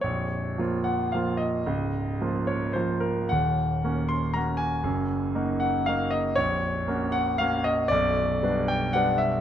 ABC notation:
X:1
M:3/4
L:1/8
Q:1/4=114
K:Bbm
V:1 name="Grand piano"
d3 g f e- | e3 d c B | g3 c' b a- | a3 g f e |
[K:F#] c3 f e d | =d3 =g f =e |]
V:2 name="Grand piano"
[B,,,,B,,,]2 [F,B,F]2 [F,B,F]2 | [D,,,D,,]2 [F,B,F]2 [F,B,F]2 | [E,,,E,,]2 [B,DG]2 [B,DG]2 | [G,,,G,,]2 [B,EG]2 [B,EG]2 |
[K:F#] [A,,,,A,,,]2 [A,CF]2 [A,CF]2 | [B,,,,B,,,]2 [=G,B,=D]2 [G,B,D]2 |]